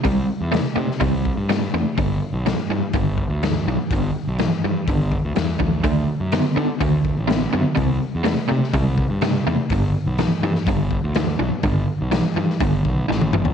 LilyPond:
<<
  \new Staff \with { instrumentName = "Overdriven electric guitar" } { \clef bass \time 4/4 \key g \major \tempo 4 = 124 <c g>4 <c a>8 <c a>8 <c g>4 <c a>8 <c a>8 | <g, d>4 <g, e>8 <g, e>8 <g, d>4 <g, e>8 <g, e>8 | <g, d>4 <g, e>8 <g, e>8 <g, d>4 <g, e>8 <g, e>8 | <d a>4 <d b>8 <d b>8 <d a>4 <d b>8 <d b>8 |
<c g>4 <c a>8 <c a>8 <c g>4 <c a>8 <c a>8 | <g, d>4 <g, e>8 <g, e>8 <g, d>4 <g, e>8 <g, e>8 | <g, d>4 <g, e>8 <g, e>8 <g, d>4 <g, e>8 <g, e>8 | }
  \new Staff \with { instrumentName = "Fingered electric bass" } { \clef bass \time 4/4 \key g \major c,8 r16 e,8 r16 c16 r16 c,8. g,8. e,16 r16 | g,,8 r16 b,,8 r16 g,16 r16 g,,8. d,8. b,,16 r16 | g,,8 r16 b,,8 r16 g,16 r16 g,,8. d,16 e,8 d,8 | d,8 r16 fis,8 r16 d16 r16 d,8. a,,8. fis,16 r16 |
c,8 r16 e,8 r16 c16 r16 c,8. g,8. e,16 r16 | g,,8 r16 b,,8 r16 g,16 r16 g,,8. d,8. b,,16 r16 | g,,8 r16 b,,8 r16 g,16 r16 g,,8 b,,8 a,,8 g,,8 | }
  \new DrumStaff \with { instrumentName = "Drums" } \drummode { \time 4/4 <hho bd>4 <hho sn>8. sn16 <hho bd>8 bd8 <hho sn>4 | <hho bd>4 <hho sn>4 <hho bd>8 bd8 <hho sn>4 | <hho bd>4 <hho sn>4 <hho bd>8 bd8 <hho sn>8 bd8 | <hho bd>4 <hho sn>4 <hho bd>8 bd8 <hho sn>4 |
<hho bd>4 <hho sn>8. sn16 <hho bd>8 bd8 <hho sn>4 | <hho bd>4 <hho sn>8. sn16 <hho bd>8 bd8 <hho sn>4 | <hho bd>4 <hho sn>8. sn16 <hho bd>8 bd8 sn16 tommh16 toml16 tomfh16 | }
>>